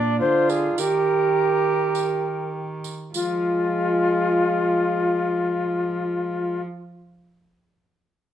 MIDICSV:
0, 0, Header, 1, 6, 480
1, 0, Start_track
1, 0, Tempo, 579710
1, 646, Time_signature, 4, 2, 24, 8
1, 2103, Tempo, 610998
1, 6655, End_track
2, 0, Start_track
2, 0, Title_t, "Recorder"
2, 0, Program_c, 0, 74
2, 0, Note_on_c, 0, 74, 112
2, 165, Note_off_c, 0, 74, 0
2, 171, Note_on_c, 0, 72, 100
2, 411, Note_on_c, 0, 68, 88
2, 424, Note_off_c, 0, 72, 0
2, 646, Note_off_c, 0, 68, 0
2, 650, Note_on_c, 0, 70, 106
2, 2075, Note_off_c, 0, 70, 0
2, 2582, Note_on_c, 0, 65, 100
2, 5305, Note_off_c, 0, 65, 0
2, 6655, End_track
3, 0, Start_track
3, 0, Title_t, "Viola"
3, 0, Program_c, 1, 41
3, 0, Note_on_c, 1, 62, 83
3, 168, Note_off_c, 1, 62, 0
3, 173, Note_on_c, 1, 65, 85
3, 655, Note_on_c, 1, 67, 88
3, 668, Note_off_c, 1, 65, 0
3, 2344, Note_off_c, 1, 67, 0
3, 2583, Note_on_c, 1, 65, 78
3, 5305, Note_off_c, 1, 65, 0
3, 6655, End_track
4, 0, Start_track
4, 0, Title_t, "Trombone"
4, 0, Program_c, 2, 57
4, 0, Note_on_c, 2, 62, 88
4, 655, Note_on_c, 2, 67, 77
4, 667, Note_off_c, 2, 62, 0
4, 2344, Note_off_c, 2, 67, 0
4, 2586, Note_on_c, 2, 56, 78
4, 5309, Note_off_c, 2, 56, 0
4, 6655, End_track
5, 0, Start_track
5, 0, Title_t, "Cello"
5, 0, Program_c, 3, 42
5, 0, Note_on_c, 3, 46, 92
5, 175, Note_on_c, 3, 50, 74
5, 188, Note_off_c, 3, 46, 0
5, 639, Note_off_c, 3, 50, 0
5, 644, Note_on_c, 3, 51, 67
5, 2370, Note_off_c, 3, 51, 0
5, 2576, Note_on_c, 3, 53, 72
5, 5299, Note_off_c, 3, 53, 0
5, 6655, End_track
6, 0, Start_track
6, 0, Title_t, "Drums"
6, 410, Note_on_c, 9, 54, 50
6, 493, Note_off_c, 9, 54, 0
6, 645, Note_on_c, 9, 54, 78
6, 728, Note_off_c, 9, 54, 0
6, 1613, Note_on_c, 9, 54, 48
6, 1696, Note_off_c, 9, 54, 0
6, 2341, Note_on_c, 9, 54, 52
6, 2419, Note_off_c, 9, 54, 0
6, 2576, Note_on_c, 9, 54, 84
6, 2655, Note_off_c, 9, 54, 0
6, 6655, End_track
0, 0, End_of_file